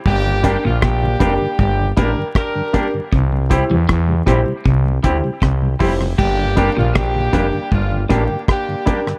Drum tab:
CC |----------------|----------------|x---------------|
HH |--x---x---x---x-|--x---x---x---o-|--x---x---x---x-|
SD |----r-------r---|----r-------r--r|----r-------r--r|
BD |o-o-o-o-o-o-o-o-|o-o-o-o-o-o-o-o-|o-o-o-o-o-o-o-o-|